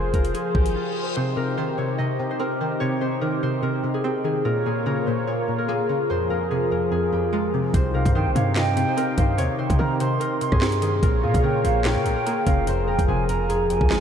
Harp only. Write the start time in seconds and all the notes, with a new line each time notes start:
Already playing: G#4 A#4 C5
0.14 A#4
0.34 G#4
0.55 G4
0.75 F4
1.16 C5
1.37 A#4
1.57 C5
1.78 C#5
1.98 D#5
2.31 C5
2.40 A#4
2.60 C5
2.80 C#5
3.01 C5
3.21 A#4
3.43 C5
3.63 A#4
3.94 G#4
4.05 G4
4.25 G#4
4.45 A#4
4.66 G#4
4.86 A#4
5.06 C5
5.27 C#5
5.58 A#4
5.68 G#4
5.89 A#4
6.10 C5
6.30 A#4
6.51 G#4
6.72 A#4
6.92 G#4
7.13 G4
7.33 F4
7.74 C5
7.94 A#4
8.15 C5
8.35 C#5
8.56 D#5
8.88 C5
8.97 A#4
9.18 C5
9.38 C#5
9.59 C5
9.79 A#4
10.00 C5
10.20 A#4
10.52 G#4
10.62 G4
10.82 G#4
11.02 A#4
11.24 G#4
11.44 A#4
11.64 C5
11.85 C#5
12.16 A#4
12.26 G#4
12.47 A#4
12.68 C5
12.88 A#4
13.08 G#4
13.29 A#4
13.49 G#4
13.70 G4
13.91 F4